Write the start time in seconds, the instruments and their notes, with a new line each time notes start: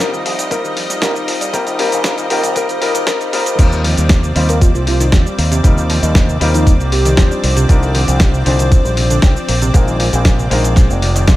Already playing: fingered electric bass C2, analog synth pad D#4 D#5
0.00 grand piano G3 C4 D#4 F4 A#4, soft synth lead A#4, kick, closed hi-hat, shaker
0.13 synth arpeggio sound D#3, shaker
0.25 fingered electric bass C2, synth arpeggio sound F3, open hi-hat
0.39 synth arpeggio sound G3, closed hi-hat, shaker
0.50 synth arpeggio sound C3, grand piano G3 C4 D#4 F4 A#4, soft synth lead A#4, kick, closed hi-hat, shaker
0.64 fingered electric bass A#1, synth arpeggio sound D#3, shaker
0.77 synth arpeggio sound F3, open hi-hat
0.90 synth arpeggio sound G3, closed hi-hat, shaker
1.01 fingered electric bass C2, synth arpeggio sound C3, grand piano G3 C4 D#4 F4 A#4, soft synth lead A#4, kick, snare, closed hi-hat, shaker
1.15 synth arpeggio sound D#3, shaker
1.28 fingered electric bass A#1, synth arpeggio sound F3, open hi-hat
1.41 synth arpeggio sound G3, closed hi-hat, shaker
1.53 fingered electric bass A#1, synth arpeggio sound C3, grand piano G3 C4 D#4 F4 A#4, soft synth lead A#4, kick, closed hi-hat, shaker
1.67 synth arpeggio sound D#3, closed hi-hat, shaker
1.78 synth arpeggio sound C3, grand piano G3 C4 D#4 F4 A#4, soft synth lead A#4, open hi-hat
1.92 fingered electric bass A#1, synth arpeggio sound D#3, closed hi-hat, shaker
2.04 synth arpeggio sound C3, grand piano G3 C4 D#4 F4 A#4, soft synth lead A#4, kick, snare, closed hi-hat, shaker
2.18 synth arpeggio sound D#3, closed hi-hat, shaker
2.30 fingered electric bass A#1, synth arpeggio sound C3, grand piano G3 C4 D#4 F4 A#4, soft synth lead A#4, open hi-hat
2.43 synth arpeggio sound D#3, closed hi-hat, shaker
2.55 synth arpeggio sound C3, grand piano G3 C4 D#4 F4 A#4, soft synth lead A#4, kick, closed hi-hat, shaker
2.69 synth arpeggio sound D#3, closed hi-hat, shaker
2.81 synth arpeggio sound C3, grand piano G3 C4 D#4 F4 A#4, soft synth lead A#4, open hi-hat
2.95 synth arpeggio sound D#3, closed hi-hat, shaker
3.06 fingered electric bass F2, synth arpeggio sound C3, grand piano G3 C4 D#4 F4 A#4, soft synth lead A#4, kick, snare, closed hi-hat, shaker
3.21 synth arpeggio sound D#3, closed hi-hat, shaker
3.32 fingered electric bass A#1, synth arpeggio sound C3, grand piano G3 C4 D#4 F4 A#4, soft synth lead A#4, open hi-hat
3.46 synth arpeggio sound D#3, closed hi-hat, shaker
3.58 fingered electric bass D#2, synth arpeggio sound C3, grand piano G3 C4 D#4 F4 A#4, analog synth pad C4 D5, kick, closed hi-hat, crash, shaker
3.72 synth arpeggio sound D#3, shaker
3.84 synth arpeggio sound F3, open hi-hat
3.97 fingered electric bass D#2, synth arpeggio sound G3, closed hi-hat, shaker
4.09 synth arpeggio sound A#3, kick, snare, closed hi-hat, shaker
4.23 synth arpeggio sound C3, shaker
4.35 fingered electric bass D#2, synth arpeggio sound D#3, grand piano G3 C4 D#4 F4 C5, open hi-hat
4.49 synth arpeggio sound F3, soft synth lead A#4, closed hi-hat, shaker
4.61 synth arpeggio sound G3, soft synth lead F4, kick, closed hi-hat, shaker
4.75 fingered electric bass C2, synth arpeggio sound A#3, soft synth lead F4, shaker
4.87 synth arpeggio sound C3, soft synth lead F4, open hi-hat
5.00 synth arpeggio sound D#3, closed hi-hat, shaker
5.12 fingered electric bass D#2, synth arpeggio sound F3, kick, snare, closed hi-hat, shaker
5.26 synth arpeggio sound G3, shaker
5.38 fingered electric bass D#2, synth arpeggio sound A#3, open hi-hat
5.52 synth arpeggio sound C3, closed hi-hat, shaker
5.63 fingered electric bass D#2, synth arpeggio sound C3, grand piano G3 C4 D#4 F4 A#4, kick, closed hi-hat, shaker
5.77 synth arpeggio sound D#3, shaker
5.90 synth arpeggio sound F3, open hi-hat
6.03 fingered electric bass D#2, synth arpeggio sound G3, closed hi-hat, shaker
6.15 synth arpeggio sound A#3, kick, snare, closed hi-hat, shaker
6.29 synth arpeggio sound C3, shaker
6.40 fingered electric bass D#2, synth arpeggio sound D#3, grand piano G3 C4 D#4 F4 A#4, open hi-hat
6.54 synth arpeggio sound F3, soft synth lead D#4, closed hi-hat, shaker
6.67 synth arpeggio sound G3, kick, closed hi-hat, shaker
6.80 fingered electric bass C2, synth arpeggio sound A#3, shaker
6.92 synth arpeggio sound C3, soft synth lead G4, open hi-hat
7.05 synth arpeggio sound D#3, closed hi-hat, shaker
7.17 fingered electric bass D#2, grand piano F3 C4 D4 D#4 C5, synth arpeggio sound F3, kick, snare, closed hi-hat, shaker
7.31 synth arpeggio sound G3, shaker
7.44 fingered electric bass C2, synth arpeggio sound G3, open hi-hat
7.57 synth arpeggio sound C3, closed hi-hat, shaker
7.68 fingered electric bass C2, synth arpeggio sound C3, grand piano F3 C4 D4 D#4 A#4, kick, closed hi-hat, shaker
7.82 synth arpeggio sound D3, shaker
7.95 synth arpeggio sound D#3, open hi-hat
8.08 fingered electric bass C2, synth arpeggio sound F3, closed hi-hat, shaker
8.20 synth arpeggio sound G3, kick, snare, closed hi-hat, shaker
8.33 synth arpeggio sound C3, shaker
8.45 fingered electric bass C2, synth arpeggio sound D3, grand piano F3 C4 D4 D#4 C5, open hi-hat
8.59 synth arpeggio sound D#3, closed hi-hat, shaker
8.72 synth arpeggio sound F3, kick, closed hi-hat, shaker
8.85 fingered electric bass A#1, synth arpeggio sound G3, shaker
8.97 synth arpeggio sound C3, open hi-hat
9.10 synth arpeggio sound D3, closed hi-hat, shaker
9.22 fingered electric bass C2, kick, snare, closed hi-hat, shaker
9.36 synth arpeggio sound F3, shaker
9.49 fingered electric bass A#1, synth arpeggio sound A#3, open hi-hat
9.62 synth arpeggio sound C3, closed hi-hat, shaker
9.73 fingered electric bass A#1, synth arpeggio sound C3, grand piano G#3 C4 D#4 F4 A#4, kick, closed hi-hat, shaker
9.88 synth arpeggio sound D#3, shaker
10.00 synth arpeggio sound F3, open hi-hat
10.13 fingered electric bass A#1, synth arpeggio sound G#3, closed hi-hat, shaker
10.25 synth arpeggio sound A#3, kick, snare, closed hi-hat, shaker
10.39 synth arpeggio sound C3, shaker
10.50 fingered electric bass A#1, synth arpeggio sound D#3, grand piano G#3 C4 D#4 F4 A#4, open hi-hat
10.64 synth arpeggio sound F3, closed hi-hat, shaker
10.76 synth arpeggio sound G#3, kick, snare, closed hi-hat, shaker
10.90 fingered electric bass F1, synth arpeggio sound A#3, shaker
11.02 synth arpeggio sound C3, open hi-hat
11.16 synth arpeggio sound D#3, closed hi-hat, shaker
11.28 fingered electric bass A#1, synth arpeggio sound F3, grand piano G#3 C4 D#4 F4 C5, kick, snare, closed hi-hat, shaker